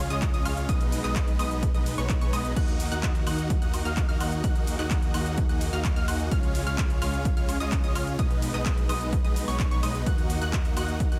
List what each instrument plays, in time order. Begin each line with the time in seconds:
Already playing: analog synth pad C#3 C#4 F4 G#4
0.10 analog synth bass C#2, supersaw synth G#3 C#4 F4 C#5 D#5, synth pluck D#6, closed hi-hat, shaker
0.22 kick, clap, closed hi-hat, shaker
0.34 analog synth bass C#2, supersaw synth G#3 C#4 F4 C#5 D#5, synth pluck D#6, closed hi-hat, shaker
0.45 analog synth bass C#2, supersaw synth G#3 C#4 F4 C#5 F5, synth pluck F6, open hi-hat, high woodblock, shaker
0.57 closed hi-hat, shaker
0.69 analog synth bass B1, supersaw synth G#3 B3 D#4 B4 D#5, analog synth pad G#3 B3 D#4, synth pluck D#6, kick, closed hi-hat, shaker
0.81 closed hi-hat, shaker
0.92 open hi-hat, shaker
1.04 analog synth bass B1, supersaw synth G#3 B3 D#4 B4 D#5, synth pluck D#6, clap, closed hi-hat, shaker
1.16 kick, clap, closed hi-hat, shaker
1.28 closed hi-hat, shaker
1.39 analog synth bass B1, supersaw synth G#3 B3 D#4 B4 D#5, synth pluck D#6, open hi-hat, high woodblock, shaker
1.51 closed hi-hat, shaker
1.63 kick, closed hi-hat, shaker
1.74 analog synth bass B1, supersaw synth G#3 B3 D#4 B4 D#5, synth pluck D#6, closed hi-hat, shaker
1.86 open hi-hat, shaker
1.98 analog synth bass B1, supersaw synth G#3 B3 D#4 B4 C#5, synth pluck C#6, closed hi-hat, shaker
2.10 kick, clap, closed hi-hat, shaker
2.21 analog synth bass B1, supersaw synth G#3 B3 D#4 B4 C#5, synth pluck C#6, closed hi-hat, shaker
2.33 analog synth bass B1, supersaw synth G#3 B3 D#4 B4 D#5, synth pluck D#6, open hi-hat, high woodblock, shaker
2.45 closed hi-hat, shaker
2.56 analog synth bass D#2, analog synth pad D#3 F#4 A#4, supersaw synth A#3 D#4 F#4 D#5 F#5, synth pluck F#6, kick, closed hi-hat, crash, shaker
2.68 closed hi-hat, shaker
2.80 open hi-hat, shaker
2.91 analog synth bass D#2, supersaw synth A#3 D#4 F#4 D#5 F#5, synth pluck F#6, closed hi-hat, shaker
3.03 kick, clap, closed hi-hat, shaker
3.15 closed hi-hat, shaker
3.27 analog synth bass D#2, supersaw synth A#3 D#4 F#4 D#5 F#5, synth pluck F#6, open hi-hat, high woodblock, shaker
3.38 closed hi-hat, shaker
3.50 kick, closed hi-hat, shaker
3.62 analog synth bass D#2, supersaw synth A#3 D#4 F#4 D#5 F#5, synth pluck F#6, closed hi-hat, shaker
3.74 open hi-hat, high woodblock, shaker
3.85 analog synth bass D#2, supersaw synth A#3 D#4 F#4 D#5 F5, synth pluck F6, closed hi-hat, shaker
3.97 kick, clap, closed hi-hat, shaker
4.09 analog synth bass D#2, supersaw synth A#3 D#4 F#4 D#5 F5, synth pluck F6, closed hi-hat, shaker
4.20 analog synth bass D#2, supersaw synth A#3 D#4 F#4 D#5 F#5, synth pluck F#6, open hi-hat, high woodblock, shaker
4.32 closed hi-hat, shaker
4.44 analog synth bass D#2, supersaw synth A#3 D#4 F#4 D#5 F#5, analog synth pad G#4, synth pluck F#6, kick, closed hi-hat, shaker
4.56 closed hi-hat, shaker
4.67 open hi-hat, shaker
4.79 analog synth bass D#2, supersaw synth A#3 D#4 F#4 D#5 F#5, synth pluck F#6, clap, closed hi-hat, shaker
4.91 kick, clap, closed hi-hat, shaker
5.03 closed hi-hat, shaker
5.14 analog synth bass D#2, supersaw synth A#3 D#4 F#4 D#5 F#5, synth pluck F#6, open hi-hat, high woodblock, shaker
5.26 closed hi-hat, shaker
5.38 kick, closed hi-hat, shaker
5.49 analog synth bass D#2, supersaw synth A#3 D#4 F#4 D#5 F#5, synth pluck F#6, closed hi-hat, shaker
5.61 open hi-hat, shaker
5.73 analog synth bass D#2, supersaw synth A#3 D#4 F#4 D#5 F5, synth pluck F6, closed hi-hat, shaker
5.84 kick, clap, closed hi-hat, shaker
5.96 analog synth bass D#2, supersaw synth A#3 D#4 F#4 D#5 F5, synth pluck F6, closed hi-hat, shaker
6.08 analog synth bass D#2, supersaw synth A#3 D#4 F#4 D#5 F#5, synth pluck F#6, open hi-hat, high woodblock, shaker
6.20 closed hi-hat, shaker
6.31 analog synth bass C#2, analog synth pad C#3 C#4 F4, supersaw synth G#3 C#4 F4 C#5 F5, synth pluck F6, kick, closed hi-hat, shaker
6.43 closed hi-hat, shaker
6.55 open hi-hat, shaker
6.67 analog synth bass C#2, supersaw synth G#3 C#4 F4 C#5 F5, synth pluck F6, closed hi-hat, shaker
6.78 kick, clap, closed hi-hat, shaker
6.90 closed hi-hat, shaker
7.02 analog synth bass C#2, supersaw synth G#3 C#4 F4 C#5 F5, synth pluck F6, open hi-hat, high woodblock, shaker
7.14 closed hi-hat, shaker
7.25 kick, closed hi-hat, shaker
7.37 analog synth bass C#2, supersaw synth G#3 C#4 F4 C#5 F5, synth pluck F6, closed hi-hat, shaker
7.49 open hi-hat, high woodblock, shaker
7.60 analog synth bass C#2, supersaw synth G#3 C#4 F4 C#5 D#5, synth pluck D#6, closed hi-hat, shaker
7.72 kick, clap, closed hi-hat, shaker
7.84 analog synth bass C#2, supersaw synth G#3 C#4 F4 C#5 D#5, synth pluck D#6, closed hi-hat, shaker
7.95 analog synth bass C#2, supersaw synth G#3 C#4 F4 C#5 F5, synth pluck F6, open hi-hat, high woodblock, shaker
8.07 closed hi-hat, shaker
8.19 analog synth bass B1, supersaw synth G#3 B3 D#4 B4 D#5, analog synth pad G#3 B3 D#4, synth pluck D#6, kick, closed hi-hat, shaker
8.31 closed hi-hat, shaker
8.42 open hi-hat, shaker
8.54 analog synth bass B1, supersaw synth G#3 B3 D#4 B4 D#5, synth pluck D#6, clap, closed hi-hat, shaker
8.66 kick, clap, closed hi-hat, shaker
8.78 closed hi-hat, shaker
8.89 analog synth bass B1, supersaw synth G#3 B3 D#4 B4 D#5, synth pluck D#6, open hi-hat, high woodblock, shaker
9.01 closed hi-hat, shaker
9.13 kick, closed hi-hat, shaker
9.24 analog synth bass B1, supersaw synth G#3 B3 D#4 B4 D#5, synth pluck D#6, closed hi-hat, shaker
9.36 open hi-hat, shaker
9.48 analog synth bass B1, supersaw synth G#3 B3 D#4 B4 C#5, synth pluck C#6, open hi-hat, shaker
9.60 kick, clap, closed hi-hat, shaker
9.71 analog synth bass B1, supersaw synth G#3 B3 D#4 B4 C#5, synth pluck C#6, closed hi-hat, shaker
9.83 analog synth bass B1, supersaw synth G#3 B3 D#4 B4 D#5, synth pluck D#6, open hi-hat, high woodblock, shaker
9.95 closed hi-hat, shaker
10.06 analog synth bass D#2, analog synth pad D#3 F#4 A#4, supersaw synth A#3 D#4 F#4 D#5 F#5, synth pluck F#6, kick, closed hi-hat, shaker
10.18 closed hi-hat, shaker
10.30 open hi-hat, shaker
10.41 analog synth bass D#2, supersaw synth A#3 D#4 F#4 D#5 F#5, synth pluck F#6, closed hi-hat, shaker
10.53 kick, clap, closed hi-hat, shaker
10.65 closed hi-hat, shaker
10.77 analog synth bass D#2, supersaw synth A#3 D#4 F#4 D#5 F#5, synth pluck F#6, open hi-hat, high woodblock, shaker
10.88 closed hi-hat, shaker
11.00 kick, closed hi-hat, shaker
11.12 analog synth bass D#2, supersaw synth A#3 D#4 F#4 D#5 F#5, synth pluck F#6, closed hi-hat, shaker